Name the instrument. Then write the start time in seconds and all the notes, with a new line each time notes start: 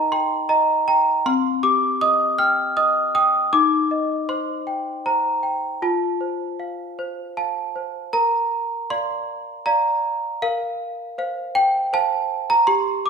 celesta
Already playing: D#4 A#4 D#5 G5 A5 A#5
0.12 G5 C6
0.49 D#5 A#5
0.88 G5 A#5
1.26 C4 C6
1.63 G4 D6
2.01 D#5 D#6
2.38 G5 F6
2.77 D#5 D#6
3.15 G5 D#6
3.53 D#4 D6
3.91 D#5
4.29 C5 C6
4.67 G5
5.06 C5 A#5
5.43 G5
5.82 F4 A5
6.21 C5
6.60 F5
6.99 C5
7.37 F5 A5
7.76 C5
8.13 A#4 A#5
8.90 D5 F5 C6
9.66 D5 F5 A#5
10.42 A#4 F5
11.18 C5 F5
11.55 G5
11.93 C5 F5 A5
12.50 A#5
12.67 G4 C6
13.06 D6